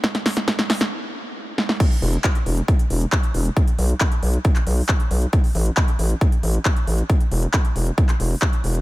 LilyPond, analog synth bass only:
\new Staff \with { instrumentName = "Analog synth bass" } { \clef bass \time 4/4 \key a \dorian \tempo 4 = 136 r1 | r8 e,,8 r8 e,,8 r8 e,,8 r8 e,,8 | r8 b,,8 r8 b,,8 r8 b,,8 r8 b,,8 | r8 a,,8 r8 a,,8 r8 a,,8 r8 a,,8 |
r8 e,,8 r8 e,,8 r8 e,,8 r8 e,,8 | }